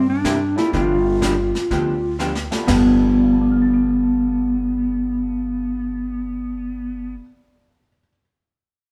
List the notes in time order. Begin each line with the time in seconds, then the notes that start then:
Already playing: G2
0.10 D4
0.24 C3 G3 A#3 E4 G4, kick, snare, hi-hat pedal
0.56 A3 B3 D4 E4 F4 G4, snare
0.73 G1 D3 F3 B3 D4 F4 G4, brush sweep, kick, snare
1.21 D3 F3 B3 D4 G4, kick, snare, hi-hat pedal
1.55 snare
1.71 D2 D3 F3 B3 D4 G4, brush sweep, kick, snare
2.19 D3 F3 B3 D4 G4, snare, hi-hat pedal
2.35 snare
2.51 A3 B3 D4 F4 G4, snare
2.62 G2 G3
2.66 G1 G2 D3 F3 B3 D4 G4, snare, floor tom, crash
2.71 F4 A4
3.17 D5
3.24 F5
3.32 A5
3.41 D6
3.51 F6
3.62 A6
3.73 D7